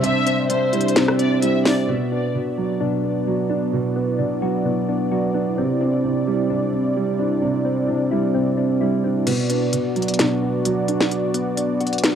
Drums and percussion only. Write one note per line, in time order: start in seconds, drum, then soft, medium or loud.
0.04 closed hi-hat medium
0.27 closed hi-hat medium
0.50 closed hi-hat medium
0.73 closed hi-hat medium
0.81 closed hi-hat medium
0.88 closed hi-hat medium
0.96 snare loud
0.96 closed hi-hat medium
1.08 cross-stick medium
1.19 closed hi-hat medium
1.42 closed hi-hat loud
1.65 snare medium
1.65 open hi-hat medium
9.27 closed hi-hat medium
9.27 crash medium
9.50 closed hi-hat medium
9.73 closed hi-hat medium
9.96 closed hi-hat soft
10.02 closed hi-hat soft
10.08 closed hi-hat medium
10.14 closed hi-hat medium
10.19 snare loud
10.19 closed hi-hat medium
10.65 closed hi-hat medium
10.88 closed hi-hat medium
11.01 snare loud
11.11 closed hi-hat medium
11.34 closed hi-hat medium
11.57 closed hi-hat medium
11.81 closed hi-hat soft
11.87 closed hi-hat soft
11.93 closed hi-hat medium
11.98 closed hi-hat medium
12.04 snare loud
12.04 closed hi-hat medium